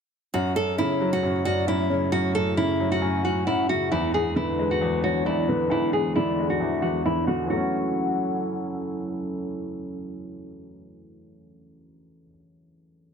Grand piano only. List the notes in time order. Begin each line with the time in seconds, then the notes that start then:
0.34 F#2
0.56 F#2
0.79 C#3
1.01 F#3
1.23 F#2
1.46 F#2
1.67 F#2
1.89 C#3
2.12 F#2
2.35 F#2
2.57 C#3
2.80 F#3
3.02 F#2
3.24 F#2
3.47 F#2
3.70 C#3
3.91 E2
4.14 E2
4.36 D3
4.59 G#3
4.81 E2
5.04 E2
5.26 E2
5.49 D3
5.70 E2
5.93 E2
6.16 D3
6.39 G#3
6.60 E2
6.83 E2
7.06 E2
7.28 D3
7.44 E3
7.48 F#3 A3
7.56 C#4